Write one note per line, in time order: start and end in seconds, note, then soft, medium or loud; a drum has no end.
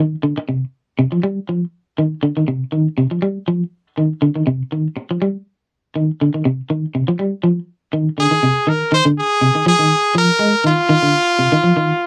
0.00 0.14 D#3 medium
0.23 0.32 D3 medium
0.38 muted clean electric guitar stroke medium
0.49 0.64 C3 medium
0.99 1.07 C3 medium
1.12 1.19 F3 medium
1.23 1.38 G3 medium
1.49 1.64 F3 medium
1.98 2.13 D#3 medium
2.23 2.31 D3 medium
2.37 2.44 D#3 medium
2.48 2.63 C3 medium
2.72 2.87 D#3 medium
2.98 3.06 C3 medium
3.11 3.18 F3 medium
3.22 3.37 G3 medium
3.48 3.62 F3 medium
3.98 4.12 D#3 medium
4.22 4.30 D3 medium
4.36 4.42 D#3 medium
4.47 4.62 C3 medium
4.72 4.87 D#3 medium
4.97 muted clean electric guitar stroke medium
5.11 5.17 F3 medium
5.22 5.36 G3 medium
5.96 6.10 D#3 medium
6.21 6.29 D3 medium
6.34 6.41 D#3 medium
6.45 6.60 C3 medium
6.70 6.85 D#3 medium
6.95 7.03 C3 medium
7.08 7.15 F3 medium
7.19 7.34 G3 medium
7.43 7.58 F3 medium
7.93 8.08 D#3 medium
8.18 8.26 D3 medium
8.18 8.70 G#4 medium
8.31 8.38 D#3 medium
8.43 8.58 C3 medium
8.67 8.82 D#3 medium
8.67 8.93 A#4 medium
8.92 9.00 D#3 medium
8.92 9.05 C5 loud
9.05 9.20 D3 medium
9.18 9.64 G#4 loud
9.41 9.50 C3 medium
9.55 9.62 D#3 medium
9.66 9.74 F3 medium
9.66 10.13 G#4 loud
9.79 9.94 D#3 medium
10.15 10.30 F3 medium
10.15 10.63 A#4 loud
10.39 10.54 G#3 medium
10.64 10.79 D#3 medium
10.64 12.07 F4 loud
10.89 10.98 D#3 medium
11.02 11.18 D3 medium
11.39 11.47 C3 medium
11.52 11.59 D#3 medium
11.63 11.72 F3 medium
11.77 11.92 D#3 medium